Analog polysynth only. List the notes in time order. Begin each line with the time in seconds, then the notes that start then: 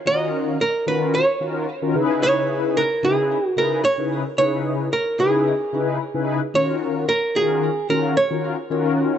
0.05 D#3 C#4 F4 F#4 A#4
0.86 D#3 C#4 F4 F#4 A#4
1.40 D#3 C#4 F4 F#4 A#4
1.82 D#3 C#4 F4 F#4 A#4
1.94 C#3 D#4 E4 G#4 B4
3.03 C#3 D#4 E4 G#4 B4
3.56 C#3 D#4 E4 G#4 B4
3.98 C#3 D#4 E4 G#4 B4
4.38 C#3 D#4 E4 G#4 B4
5.19 C#3 D#4 E4 G#4 B4
5.73 C#3 D#4 E4 G#4 B4
6.14 C#3 D#4 E4 G#4 B4
6.54 D#3 C#4 F4 F#4 A#4
7.35 D#3 C#4 F4 F#4 A#4
7.89 D#3 C#4 F4 F#4 A#4
8.30 D#3 C#4 F4 F#4 A#4
8.70 D#3 C#4 F4 F#4 A#4